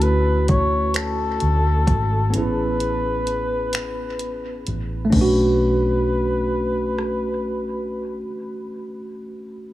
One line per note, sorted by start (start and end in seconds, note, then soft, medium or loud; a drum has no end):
0.00 1.37 D2 medium
0.00 2.28 A3 medium
0.00 2.29 C#4 soft
0.00 2.31 E4 medium
0.00 2.32 F#4 medium
0.00 0.48 B4 medium
0.00 closed hi-hat soft
0.48 0.97 C#5 medium
0.48 kick medium
0.48 closed hi-hat soft
0.94 2.34 A4 medium
0.94 finger snap loud
0.94 closed hi-hat medium
1.40 1.84 D2 medium
1.40 closed hi-hat soft
1.87 2.30 G#1 medium
1.87 kick medium
1.87 closed hi-hat soft
2.30 5.07 B3 medium
2.30 5.08 C#4 soft
2.30 closed hi-hat medium
2.34 4.62 A1 medium
2.34 5.10 E4 medium
2.34 5.11 G#4 medium
2.34 4.63 B4 medium
2.80 closed hi-hat soft
3.27 closed hi-hat soft
3.73 finger snap loud
3.73 closed hi-hat medium
4.19 closed hi-hat soft
4.67 5.09 A1 medium
4.67 closed hi-hat soft
5.05 8.12 A3 medium
5.10 8.20 B1 medium
5.10 8.17 C#4 medium
5.10 8.21 B4 medium
5.10 kick medium
5.10 crash medium
5.15 8.22 D4 medium
5.21 8.28 F#4 medium
6.98 cross-stick soft